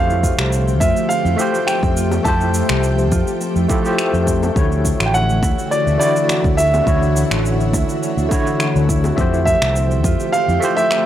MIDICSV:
0, 0, Header, 1, 7, 480
1, 0, Start_track
1, 0, Tempo, 576923
1, 1875, Time_signature, 4, 2, 24, 8
1, 9201, End_track
2, 0, Start_track
2, 0, Title_t, "Grand piano"
2, 0, Program_c, 0, 0
2, 0, Note_on_c, 0, 77, 94
2, 639, Note_off_c, 0, 77, 0
2, 667, Note_on_c, 0, 76, 92
2, 894, Note_off_c, 0, 76, 0
2, 905, Note_on_c, 0, 77, 97
2, 1387, Note_on_c, 0, 79, 91
2, 1404, Note_off_c, 0, 77, 0
2, 1867, Note_on_c, 0, 81, 96
2, 1886, Note_off_c, 0, 79, 0
2, 3518, Note_off_c, 0, 81, 0
2, 4210, Note_on_c, 0, 79, 81
2, 4270, Note_off_c, 0, 79, 0
2, 4277, Note_on_c, 0, 78, 102
2, 4723, Note_off_c, 0, 78, 0
2, 4753, Note_on_c, 0, 74, 93
2, 4976, Note_off_c, 0, 74, 0
2, 4988, Note_on_c, 0, 74, 95
2, 5468, Note_on_c, 0, 76, 105
2, 5486, Note_off_c, 0, 74, 0
2, 5919, Note_off_c, 0, 76, 0
2, 7866, Note_on_c, 0, 76, 107
2, 8590, Note_on_c, 0, 77, 111
2, 8612, Note_off_c, 0, 76, 0
2, 8933, Note_off_c, 0, 77, 0
2, 8957, Note_on_c, 0, 76, 120
2, 9201, Note_off_c, 0, 76, 0
2, 9201, End_track
3, 0, Start_track
3, 0, Title_t, "Tine electric piano"
3, 0, Program_c, 1, 4
3, 0, Note_on_c, 1, 53, 83
3, 0, Note_on_c, 1, 57, 91
3, 0, Note_on_c, 1, 67, 85
3, 0, Note_on_c, 1, 72, 101
3, 0, Note_on_c, 1, 77, 85
3, 95, Control_c, 1, 64, 127
3, 1117, Note_off_c, 1, 57, 0
3, 1122, Note_off_c, 1, 77, 0
3, 1127, Note_off_c, 1, 53, 0
3, 1134, Note_off_c, 1, 67, 0
3, 1134, Note_on_c, 1, 57, 99
3, 1139, Note_off_c, 1, 72, 0
3, 1146, Note_on_c, 1, 76, 90
3, 1157, Note_on_c, 1, 53, 87
3, 1168, Note_on_c, 1, 67, 89
3, 1178, Note_on_c, 1, 72, 116
3, 1837, Note_off_c, 1, 57, 0
3, 1843, Note_off_c, 1, 76, 0
3, 1849, Note_off_c, 1, 53, 0
3, 1854, Note_off_c, 1, 67, 0
3, 1855, Note_on_c, 1, 57, 92
3, 1859, Note_off_c, 1, 72, 0
3, 1866, Note_on_c, 1, 76, 81
3, 1876, Note_on_c, 1, 53, 81
3, 1888, Note_on_c, 1, 67, 78
3, 1898, Note_on_c, 1, 72, 102
3, 3038, Note_off_c, 1, 57, 0
3, 3043, Note_off_c, 1, 76, 0
3, 3048, Note_off_c, 1, 53, 0
3, 3054, Note_off_c, 1, 67, 0
3, 3059, Note_off_c, 1, 72, 0
3, 3063, Note_on_c, 1, 57, 90
3, 3070, Note_on_c, 1, 64, 89
3, 3076, Note_on_c, 1, 65, 88
3, 3080, Note_on_c, 1, 67, 89
3, 3087, Note_on_c, 1, 69, 101
3, 3165, Note_off_c, 1, 57, 0
3, 3169, Note_off_c, 1, 64, 0
3, 3172, Note_off_c, 1, 65, 0
3, 3174, Note_off_c, 1, 67, 0
3, 3177, Note_off_c, 1, 69, 0
3, 3181, Note_on_c, 1, 57, 92
3, 3190, Note_on_c, 1, 76, 83
3, 3203, Note_on_c, 1, 53, 89
3, 3212, Note_on_c, 1, 67, 84
3, 3224, Note_on_c, 1, 72, 99
3, 3758, Note_off_c, 1, 57, 0
3, 3762, Note_off_c, 1, 76, 0
3, 3769, Note_off_c, 1, 53, 0
3, 3771, Note_on_c, 1, 57, 88
3, 3773, Note_off_c, 1, 67, 0
3, 3779, Note_off_c, 1, 72, 0
3, 3782, Note_on_c, 1, 50, 82
3, 3795, Note_on_c, 1, 64, 82
3, 3804, Note_on_c, 1, 66, 82
3, 3805, Control_c, 1, 64, 0
3, 3816, Note_on_c, 1, 73, 99
3, 3932, Control_c, 1, 64, 127
3, 4956, Note_off_c, 1, 57, 0
3, 4961, Note_off_c, 1, 50, 0
3, 4968, Note_off_c, 1, 64, 0
3, 4972, Note_off_c, 1, 66, 0
3, 4974, Note_on_c, 1, 57, 99
3, 4978, Note_off_c, 1, 73, 0
3, 4984, Note_on_c, 1, 50, 94
3, 4994, Note_on_c, 1, 64, 93
3, 5006, Note_on_c, 1, 66, 98
3, 5019, Note_on_c, 1, 74, 110
3, 5677, Note_off_c, 1, 57, 0
3, 5682, Note_off_c, 1, 50, 0
3, 5688, Note_off_c, 1, 64, 0
3, 5690, Note_on_c, 1, 57, 91
3, 5694, Note_off_c, 1, 66, 0
3, 5700, Note_off_c, 1, 74, 0
3, 5701, Note_on_c, 1, 50, 82
3, 5711, Note_on_c, 1, 64, 81
3, 5721, Note_on_c, 1, 66, 86
3, 5734, Note_on_c, 1, 73, 103
3, 6875, Note_off_c, 1, 57, 0
3, 6881, Note_off_c, 1, 50, 0
3, 6886, Note_off_c, 1, 64, 0
3, 6891, Note_off_c, 1, 66, 0
3, 6895, Note_on_c, 1, 57, 96
3, 6897, Note_off_c, 1, 73, 0
3, 6907, Note_on_c, 1, 50, 92
3, 6918, Note_on_c, 1, 64, 97
3, 6927, Note_on_c, 1, 66, 92
3, 6940, Note_on_c, 1, 73, 112
3, 7598, Note_off_c, 1, 57, 0
3, 7604, Note_off_c, 1, 50, 0
3, 7609, Note_off_c, 1, 64, 0
3, 7614, Note_off_c, 1, 66, 0
3, 7617, Note_on_c, 1, 57, 88
3, 7621, Note_off_c, 1, 73, 0
3, 7627, Note_on_c, 1, 76, 86
3, 7638, Note_on_c, 1, 53, 86
3, 7647, Control_c, 1, 64, 0
3, 7649, Note_on_c, 1, 67, 88
3, 7661, Note_on_c, 1, 72, 100
3, 7778, Control_c, 1, 64, 127
3, 8799, Note_off_c, 1, 57, 0
3, 8804, Note_off_c, 1, 76, 0
3, 8809, Note_off_c, 1, 53, 0
3, 8814, Note_on_c, 1, 57, 101
3, 8815, Note_off_c, 1, 67, 0
3, 8821, Note_off_c, 1, 72, 0
3, 8823, Note_on_c, 1, 76, 93
3, 8835, Note_on_c, 1, 53, 89
3, 8848, Note_on_c, 1, 67, 96
3, 8857, Note_on_c, 1, 72, 112
3, 9201, Note_off_c, 1, 53, 0
3, 9201, Note_off_c, 1, 57, 0
3, 9201, Note_off_c, 1, 67, 0
3, 9201, Note_off_c, 1, 72, 0
3, 9201, Note_off_c, 1, 76, 0
3, 9201, End_track
4, 0, Start_track
4, 0, Title_t, "Harp"
4, 0, Program_c, 2, 46
4, 0, Note_on_c, 2, 60, 107
4, 0, Note_on_c, 2, 66, 74
4, 79, Note_on_c, 2, 64, 79
4, 194, Note_on_c, 2, 65, 73
4, 244, Note_off_c, 2, 64, 0
4, 244, Note_off_c, 2, 66, 0
4, 317, Note_on_c, 2, 67, 73
4, 430, Note_off_c, 2, 60, 0
4, 434, Note_on_c, 2, 60, 105
4, 557, Note_off_c, 2, 60, 0
4, 560, Note_on_c, 2, 60, 83
4, 672, Note_off_c, 2, 65, 0
4, 675, Note_on_c, 2, 65, 99
4, 797, Note_off_c, 2, 67, 0
4, 800, Note_on_c, 2, 67, 77
4, 910, Note_off_c, 2, 60, 0
4, 913, Note_on_c, 2, 60, 104
4, 1038, Note_on_c, 2, 64, 80
4, 1088, Note_off_c, 2, 65, 0
4, 1155, Note_on_c, 2, 65, 82
4, 1205, Note_off_c, 2, 64, 0
4, 1277, Note_off_c, 2, 67, 0
4, 1281, Note_on_c, 2, 67, 76
4, 1393, Note_off_c, 2, 60, 0
4, 1396, Note_on_c, 2, 60, 96
4, 1519, Note_off_c, 2, 60, 0
4, 1523, Note_on_c, 2, 60, 79
4, 1633, Note_off_c, 2, 65, 0
4, 1636, Note_on_c, 2, 65, 101
4, 1760, Note_off_c, 2, 67, 0
4, 1764, Note_on_c, 2, 67, 77
4, 1873, Note_off_c, 2, 60, 0
4, 1876, Note_on_c, 2, 60, 97
4, 2000, Note_on_c, 2, 64, 75
4, 2050, Note_off_c, 2, 65, 0
4, 2115, Note_on_c, 2, 65, 72
4, 2165, Note_off_c, 2, 64, 0
4, 2237, Note_off_c, 2, 67, 0
4, 2240, Note_on_c, 2, 67, 80
4, 2350, Note_off_c, 2, 60, 0
4, 2353, Note_on_c, 2, 60, 100
4, 2477, Note_off_c, 2, 60, 0
4, 2480, Note_on_c, 2, 60, 76
4, 2589, Note_off_c, 2, 65, 0
4, 2593, Note_on_c, 2, 65, 100
4, 2715, Note_off_c, 2, 67, 0
4, 2718, Note_on_c, 2, 67, 77
4, 2829, Note_off_c, 2, 60, 0
4, 2833, Note_on_c, 2, 60, 99
4, 2963, Note_on_c, 2, 64, 74
4, 3013, Note_off_c, 2, 65, 0
4, 3072, Note_on_c, 2, 72, 71
4, 3196, Note_off_c, 2, 67, 0
4, 3200, Note_on_c, 2, 67, 81
4, 3313, Note_on_c, 2, 69, 82
4, 3436, Note_off_c, 2, 60, 0
4, 3440, Note_on_c, 2, 60, 108
4, 3549, Note_off_c, 2, 60, 0
4, 3553, Note_on_c, 2, 60, 98
4, 3679, Note_off_c, 2, 69, 0
4, 3683, Note_on_c, 2, 69, 75
4, 3793, Note_on_c, 2, 61, 99
4, 3843, Note_off_c, 2, 60, 0
4, 3843, Note_off_c, 2, 72, 0
4, 3921, Note_on_c, 2, 62, 72
4, 3971, Note_off_c, 2, 61, 0
4, 4033, Note_off_c, 2, 62, 0
4, 4036, Note_on_c, 2, 62, 75
4, 4163, Note_on_c, 2, 66, 78
4, 4213, Note_off_c, 2, 67, 0
4, 4275, Note_on_c, 2, 61, 106
4, 4324, Note_off_c, 2, 62, 0
4, 4397, Note_off_c, 2, 61, 0
4, 4401, Note_on_c, 2, 61, 79
4, 4511, Note_off_c, 2, 64, 0
4, 4514, Note_on_c, 2, 64, 96
4, 4636, Note_off_c, 2, 66, 0
4, 4639, Note_on_c, 2, 66, 78
4, 4747, Note_off_c, 2, 61, 0
4, 4750, Note_on_c, 2, 61, 106
4, 4879, Note_on_c, 2, 62, 72
4, 4929, Note_off_c, 2, 61, 0
4, 4991, Note_off_c, 2, 62, 0
4, 4994, Note_on_c, 2, 62, 75
4, 5118, Note_off_c, 2, 66, 0
4, 5121, Note_on_c, 2, 66, 74
4, 5233, Note_on_c, 2, 61, 96
4, 5283, Note_off_c, 2, 62, 0
4, 5358, Note_off_c, 2, 61, 0
4, 5361, Note_on_c, 2, 61, 80
4, 5475, Note_off_c, 2, 64, 0
4, 5478, Note_on_c, 2, 64, 102
4, 5510, Note_off_c, 2, 69, 0
4, 5598, Note_off_c, 2, 66, 0
4, 5601, Note_on_c, 2, 66, 75
4, 5712, Note_off_c, 2, 61, 0
4, 5715, Note_on_c, 2, 61, 97
4, 5843, Note_on_c, 2, 62, 79
4, 5893, Note_off_c, 2, 61, 0
4, 5953, Note_off_c, 2, 62, 0
4, 5956, Note_on_c, 2, 62, 77
4, 6078, Note_off_c, 2, 66, 0
4, 6081, Note_on_c, 2, 66, 81
4, 6194, Note_on_c, 2, 61, 98
4, 6244, Note_off_c, 2, 62, 0
4, 6319, Note_off_c, 2, 61, 0
4, 6322, Note_on_c, 2, 61, 77
4, 6430, Note_off_c, 2, 64, 0
4, 6434, Note_on_c, 2, 64, 98
4, 6556, Note_off_c, 2, 66, 0
4, 6559, Note_on_c, 2, 66, 78
4, 6671, Note_off_c, 2, 61, 0
4, 6674, Note_on_c, 2, 61, 105
4, 6800, Note_on_c, 2, 62, 76
4, 6850, Note_off_c, 2, 61, 0
4, 6913, Note_off_c, 2, 62, 0
4, 6916, Note_on_c, 2, 62, 79
4, 7040, Note_off_c, 2, 66, 0
4, 7043, Note_on_c, 2, 66, 76
4, 7156, Note_on_c, 2, 61, 97
4, 7206, Note_off_c, 2, 62, 0
4, 7279, Note_off_c, 2, 61, 0
4, 7283, Note_on_c, 2, 61, 78
4, 7393, Note_off_c, 2, 64, 0
4, 7396, Note_on_c, 2, 64, 108
4, 7521, Note_off_c, 2, 66, 0
4, 7524, Note_on_c, 2, 66, 78
4, 7636, Note_on_c, 2, 60, 95
4, 7686, Note_off_c, 2, 61, 0
4, 7760, Note_off_c, 2, 64, 0
4, 7763, Note_on_c, 2, 64, 77
4, 7874, Note_off_c, 2, 64, 0
4, 7878, Note_on_c, 2, 64, 74
4, 8002, Note_on_c, 2, 67, 75
4, 8051, Note_off_c, 2, 66, 0
4, 8114, Note_off_c, 2, 60, 0
4, 8117, Note_on_c, 2, 60, 105
4, 8241, Note_off_c, 2, 60, 0
4, 8244, Note_on_c, 2, 60, 77
4, 8358, Note_on_c, 2, 65, 98
4, 8408, Note_off_c, 2, 64, 0
4, 8480, Note_off_c, 2, 67, 0
4, 8483, Note_on_c, 2, 67, 82
4, 8592, Note_off_c, 2, 60, 0
4, 8595, Note_on_c, 2, 60, 108
4, 8724, Note_on_c, 2, 64, 83
4, 8774, Note_off_c, 2, 65, 0
4, 8834, Note_off_c, 2, 64, 0
4, 8837, Note_on_c, 2, 64, 74
4, 8959, Note_off_c, 2, 67, 0
4, 8963, Note_on_c, 2, 67, 80
4, 9072, Note_off_c, 2, 60, 0
4, 9075, Note_on_c, 2, 60, 101
4, 9199, Note_off_c, 2, 60, 0
4, 9201, Note_off_c, 2, 64, 0
4, 9201, Note_off_c, 2, 67, 0
4, 9201, End_track
5, 0, Start_track
5, 0, Title_t, "Ambient pad"
5, 0, Program_c, 3, 92
5, 0, Note_on_c, 3, 53, 86
5, 0, Note_on_c, 3, 57, 74
5, 0, Note_on_c, 3, 67, 88
5, 0, Note_on_c, 3, 79, 73
5, 3760, Note_off_c, 3, 79, 0
5, 3761, Note_off_c, 3, 53, 0
5, 3761, Note_off_c, 3, 67, 0
5, 3762, Note_off_c, 3, 57, 0
5, 3796, Note_on_c, 3, 50, 78
5, 3796, Note_on_c, 3, 52, 83
5, 3796, Note_on_c, 3, 66, 91
5, 3798, Note_on_c, 3, 76, 73
5, 7602, Note_off_c, 3, 50, 0
5, 7603, Note_off_c, 3, 52, 0
5, 7603, Note_off_c, 3, 66, 0
5, 7604, Note_off_c, 3, 76, 0
5, 7635, Note_on_c, 3, 79, 75
5, 7637, Note_on_c, 3, 57, 75
5, 7638, Note_on_c, 3, 53, 86
5, 7638, Note_on_c, 3, 67, 91
5, 9201, Note_off_c, 3, 53, 0
5, 9201, Note_off_c, 3, 57, 0
5, 9201, Note_off_c, 3, 67, 0
5, 9201, Note_off_c, 3, 79, 0
5, 9201, End_track
6, 0, Start_track
6, 0, Title_t, "Fingered electric bass"
6, 0, Program_c, 4, 33
6, 0, Note_on_c, 4, 41, 98
6, 253, Note_off_c, 4, 41, 0
6, 320, Note_on_c, 4, 36, 103
6, 675, Note_off_c, 4, 36, 0
6, 675, Note_on_c, 4, 41, 107
6, 758, Note_off_c, 4, 41, 0
6, 1040, Note_on_c, 4, 41, 86
6, 1116, Note_off_c, 4, 41, 0
6, 1522, Note_on_c, 4, 41, 89
6, 1814, Note_off_c, 4, 41, 0
6, 1874, Note_on_c, 4, 41, 99
6, 2172, Note_off_c, 4, 41, 0
6, 2243, Note_on_c, 4, 36, 102
6, 2593, Note_off_c, 4, 36, 0
6, 2593, Note_on_c, 4, 41, 102
6, 2678, Note_off_c, 4, 41, 0
6, 2961, Note_on_c, 4, 41, 87
6, 3036, Note_off_c, 4, 41, 0
6, 3441, Note_on_c, 4, 41, 89
6, 3733, Note_off_c, 4, 41, 0
6, 3794, Note_on_c, 4, 38, 94
6, 4092, Note_off_c, 4, 38, 0
6, 4163, Note_on_c, 4, 33, 102
6, 4516, Note_off_c, 4, 33, 0
6, 4516, Note_on_c, 4, 38, 102
6, 4599, Note_off_c, 4, 38, 0
6, 4883, Note_on_c, 4, 38, 85
6, 4957, Note_off_c, 4, 38, 0
6, 5361, Note_on_c, 4, 38, 88
6, 5653, Note_off_c, 4, 38, 0
6, 5714, Note_on_c, 4, 38, 99
6, 6012, Note_off_c, 4, 38, 0
6, 6081, Note_on_c, 4, 33, 101
6, 6434, Note_off_c, 4, 33, 0
6, 6434, Note_on_c, 4, 38, 100
6, 6518, Note_off_c, 4, 38, 0
6, 6801, Note_on_c, 4, 38, 90
6, 6876, Note_off_c, 4, 38, 0
6, 7285, Note_on_c, 4, 38, 93
6, 7575, Note_off_c, 4, 38, 0
6, 7635, Note_on_c, 4, 41, 100
6, 7933, Note_off_c, 4, 41, 0
6, 8003, Note_on_c, 4, 36, 105
6, 8353, Note_off_c, 4, 36, 0
6, 8353, Note_on_c, 4, 41, 103
6, 8438, Note_off_c, 4, 41, 0
6, 8722, Note_on_c, 4, 41, 94
6, 8797, Note_off_c, 4, 41, 0
6, 9201, End_track
7, 0, Start_track
7, 0, Title_t, "Drums"
7, 84, Note_on_c, 9, 69, 22
7, 167, Note_off_c, 9, 69, 0
7, 195, Note_on_c, 9, 36, 63
7, 200, Note_on_c, 9, 69, 78
7, 278, Note_off_c, 9, 36, 0
7, 283, Note_off_c, 9, 69, 0
7, 321, Note_on_c, 9, 26, 86
7, 326, Note_on_c, 9, 69, 38
7, 404, Note_off_c, 9, 26, 0
7, 409, Note_off_c, 9, 69, 0
7, 438, Note_on_c, 9, 69, 52
7, 521, Note_off_c, 9, 69, 0
7, 565, Note_on_c, 9, 69, 25
7, 648, Note_off_c, 9, 69, 0
7, 674, Note_on_c, 9, 36, 108
7, 677, Note_on_c, 9, 69, 83
7, 758, Note_off_c, 9, 36, 0
7, 760, Note_off_c, 9, 69, 0
7, 803, Note_on_c, 9, 69, 37
7, 886, Note_off_c, 9, 69, 0
7, 919, Note_on_c, 9, 69, 51
7, 1002, Note_off_c, 9, 69, 0
7, 1047, Note_on_c, 9, 69, 23
7, 1130, Note_off_c, 9, 69, 0
7, 1158, Note_on_c, 9, 69, 83
7, 1241, Note_off_c, 9, 69, 0
7, 1286, Note_on_c, 9, 69, 38
7, 1369, Note_off_c, 9, 69, 0
7, 1395, Note_on_c, 9, 26, 76
7, 1399, Note_on_c, 9, 69, 45
7, 1478, Note_off_c, 9, 26, 0
7, 1483, Note_off_c, 9, 69, 0
7, 1521, Note_on_c, 9, 36, 111
7, 1525, Note_on_c, 9, 69, 23
7, 1605, Note_off_c, 9, 36, 0
7, 1609, Note_off_c, 9, 69, 0
7, 1638, Note_on_c, 9, 69, 87
7, 1722, Note_off_c, 9, 69, 0
7, 1759, Note_on_c, 9, 60, 77
7, 1764, Note_on_c, 9, 69, 34
7, 1842, Note_off_c, 9, 60, 0
7, 1847, Note_off_c, 9, 69, 0
7, 1875, Note_on_c, 9, 36, 113
7, 1876, Note_on_c, 9, 69, 46
7, 1958, Note_off_c, 9, 36, 0
7, 1959, Note_off_c, 9, 69, 0
7, 2003, Note_on_c, 9, 69, 23
7, 2086, Note_off_c, 9, 69, 0
7, 2115, Note_on_c, 9, 69, 77
7, 2199, Note_off_c, 9, 69, 0
7, 2240, Note_on_c, 9, 26, 88
7, 2244, Note_on_c, 9, 69, 37
7, 2323, Note_off_c, 9, 26, 0
7, 2328, Note_off_c, 9, 69, 0
7, 2356, Note_on_c, 9, 69, 47
7, 2440, Note_off_c, 9, 69, 0
7, 2483, Note_on_c, 9, 69, 26
7, 2567, Note_off_c, 9, 69, 0
7, 2595, Note_on_c, 9, 36, 107
7, 2596, Note_on_c, 9, 69, 80
7, 2678, Note_off_c, 9, 36, 0
7, 2679, Note_off_c, 9, 69, 0
7, 2724, Note_on_c, 9, 69, 37
7, 2807, Note_off_c, 9, 69, 0
7, 2838, Note_on_c, 9, 69, 47
7, 2921, Note_off_c, 9, 69, 0
7, 2962, Note_on_c, 9, 69, 22
7, 3046, Note_off_c, 9, 69, 0
7, 3075, Note_on_c, 9, 36, 106
7, 3076, Note_on_c, 9, 69, 77
7, 3158, Note_off_c, 9, 36, 0
7, 3159, Note_off_c, 9, 69, 0
7, 3205, Note_on_c, 9, 69, 37
7, 3288, Note_off_c, 9, 69, 0
7, 3315, Note_on_c, 9, 26, 74
7, 3320, Note_on_c, 9, 69, 46
7, 3398, Note_off_c, 9, 26, 0
7, 3403, Note_off_c, 9, 69, 0
7, 3446, Note_on_c, 9, 69, 23
7, 3529, Note_off_c, 9, 69, 0
7, 3554, Note_on_c, 9, 36, 66
7, 3557, Note_on_c, 9, 69, 88
7, 3637, Note_off_c, 9, 36, 0
7, 3640, Note_off_c, 9, 69, 0
7, 3686, Note_on_c, 9, 60, 66
7, 3686, Note_on_c, 9, 69, 32
7, 3769, Note_off_c, 9, 60, 0
7, 3769, Note_off_c, 9, 69, 0
7, 3794, Note_on_c, 9, 36, 120
7, 3800, Note_on_c, 9, 69, 45
7, 3878, Note_off_c, 9, 36, 0
7, 3883, Note_off_c, 9, 69, 0
7, 3926, Note_on_c, 9, 69, 22
7, 4009, Note_off_c, 9, 69, 0
7, 4035, Note_on_c, 9, 36, 64
7, 4038, Note_on_c, 9, 69, 81
7, 4118, Note_off_c, 9, 36, 0
7, 4121, Note_off_c, 9, 69, 0
7, 4162, Note_on_c, 9, 26, 76
7, 4167, Note_on_c, 9, 69, 36
7, 4245, Note_off_c, 9, 26, 0
7, 4250, Note_off_c, 9, 69, 0
7, 4280, Note_on_c, 9, 69, 49
7, 4363, Note_off_c, 9, 69, 0
7, 4406, Note_on_c, 9, 69, 24
7, 4489, Note_off_c, 9, 69, 0
7, 4515, Note_on_c, 9, 36, 110
7, 4521, Note_on_c, 9, 69, 76
7, 4598, Note_off_c, 9, 36, 0
7, 4604, Note_off_c, 9, 69, 0
7, 4648, Note_on_c, 9, 69, 36
7, 4731, Note_off_c, 9, 69, 0
7, 4760, Note_on_c, 9, 69, 49
7, 4843, Note_off_c, 9, 69, 0
7, 4887, Note_on_c, 9, 69, 22
7, 4970, Note_off_c, 9, 69, 0
7, 5002, Note_on_c, 9, 69, 73
7, 5085, Note_off_c, 9, 69, 0
7, 5127, Note_on_c, 9, 69, 36
7, 5210, Note_off_c, 9, 69, 0
7, 5236, Note_on_c, 9, 26, 76
7, 5241, Note_on_c, 9, 69, 44
7, 5319, Note_off_c, 9, 26, 0
7, 5324, Note_off_c, 9, 69, 0
7, 5361, Note_on_c, 9, 36, 106
7, 5365, Note_on_c, 9, 69, 23
7, 5444, Note_off_c, 9, 36, 0
7, 5449, Note_off_c, 9, 69, 0
7, 5479, Note_on_c, 9, 69, 82
7, 5562, Note_off_c, 9, 69, 0
7, 5605, Note_on_c, 9, 60, 64
7, 5607, Note_on_c, 9, 69, 29
7, 5689, Note_off_c, 9, 60, 0
7, 5690, Note_off_c, 9, 69, 0
7, 5715, Note_on_c, 9, 36, 107
7, 5719, Note_on_c, 9, 69, 44
7, 5798, Note_off_c, 9, 36, 0
7, 5802, Note_off_c, 9, 69, 0
7, 5846, Note_on_c, 9, 69, 21
7, 5929, Note_off_c, 9, 69, 0
7, 5962, Note_on_c, 9, 69, 72
7, 6045, Note_off_c, 9, 69, 0
7, 6084, Note_on_c, 9, 26, 79
7, 6089, Note_on_c, 9, 69, 35
7, 6168, Note_off_c, 9, 26, 0
7, 6172, Note_off_c, 9, 69, 0
7, 6203, Note_on_c, 9, 69, 46
7, 6286, Note_off_c, 9, 69, 0
7, 6327, Note_on_c, 9, 69, 23
7, 6410, Note_off_c, 9, 69, 0
7, 6435, Note_on_c, 9, 36, 100
7, 6440, Note_on_c, 9, 69, 81
7, 6519, Note_off_c, 9, 36, 0
7, 6523, Note_off_c, 9, 69, 0
7, 6566, Note_on_c, 9, 69, 35
7, 6649, Note_off_c, 9, 69, 0
7, 6682, Note_on_c, 9, 69, 47
7, 6765, Note_off_c, 9, 69, 0
7, 6806, Note_on_c, 9, 69, 22
7, 6889, Note_off_c, 9, 69, 0
7, 6916, Note_on_c, 9, 36, 104
7, 6920, Note_on_c, 9, 69, 77
7, 6999, Note_off_c, 9, 36, 0
7, 7003, Note_off_c, 9, 69, 0
7, 7045, Note_on_c, 9, 69, 36
7, 7128, Note_off_c, 9, 69, 0
7, 7155, Note_on_c, 9, 26, 72
7, 7159, Note_on_c, 9, 69, 41
7, 7238, Note_off_c, 9, 26, 0
7, 7243, Note_off_c, 9, 69, 0
7, 7287, Note_on_c, 9, 69, 23
7, 7370, Note_off_c, 9, 69, 0
7, 7396, Note_on_c, 9, 36, 65
7, 7401, Note_on_c, 9, 69, 80
7, 7479, Note_off_c, 9, 36, 0
7, 7485, Note_off_c, 9, 69, 0
7, 7521, Note_on_c, 9, 60, 64
7, 7527, Note_on_c, 9, 69, 30
7, 7605, Note_off_c, 9, 60, 0
7, 7610, Note_off_c, 9, 69, 0
7, 7636, Note_on_c, 9, 36, 105
7, 7641, Note_on_c, 9, 69, 42
7, 7719, Note_off_c, 9, 36, 0
7, 7724, Note_off_c, 9, 69, 0
7, 7769, Note_on_c, 9, 69, 20
7, 7852, Note_off_c, 9, 69, 0
7, 7876, Note_on_c, 9, 36, 56
7, 7881, Note_on_c, 9, 69, 68
7, 7959, Note_off_c, 9, 36, 0
7, 7964, Note_off_c, 9, 69, 0
7, 8003, Note_on_c, 9, 26, 81
7, 8008, Note_on_c, 9, 69, 35
7, 8086, Note_off_c, 9, 26, 0
7, 8091, Note_off_c, 9, 69, 0
7, 8120, Note_on_c, 9, 69, 47
7, 8203, Note_off_c, 9, 69, 0
7, 8245, Note_on_c, 9, 69, 22
7, 8328, Note_off_c, 9, 69, 0
7, 8355, Note_on_c, 9, 36, 107
7, 8359, Note_on_c, 9, 69, 69
7, 8438, Note_off_c, 9, 36, 0
7, 8442, Note_off_c, 9, 69, 0
7, 8485, Note_on_c, 9, 69, 33
7, 8569, Note_off_c, 9, 69, 0
7, 8599, Note_on_c, 9, 69, 43
7, 8683, Note_off_c, 9, 69, 0
7, 8728, Note_on_c, 9, 69, 21
7, 8812, Note_off_c, 9, 69, 0
7, 8841, Note_on_c, 9, 69, 71
7, 8924, Note_off_c, 9, 69, 0
7, 8968, Note_on_c, 9, 69, 34
7, 9051, Note_off_c, 9, 69, 0
7, 9075, Note_on_c, 9, 26, 75
7, 9080, Note_on_c, 9, 69, 40
7, 9158, Note_off_c, 9, 26, 0
7, 9163, Note_off_c, 9, 69, 0
7, 9201, End_track
0, 0, End_of_file